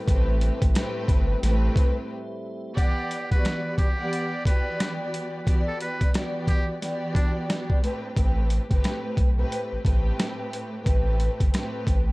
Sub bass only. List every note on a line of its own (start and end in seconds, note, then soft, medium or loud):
0.08 0.50 A1 loud
0.62 0.72 A1 medium
1.09 1.35 G1 medium
1.43 1.69 A1 loud
8.17 8.59 A1 loud
8.71 8.81 G1 loud
9.17 9.44 B1 medium
9.72 9.78 A1 soft
9.85 10.12 A1 medium
10.86 11.29 A1 loud
11.41 11.51 G1 medium
11.87 12.12 A1 medium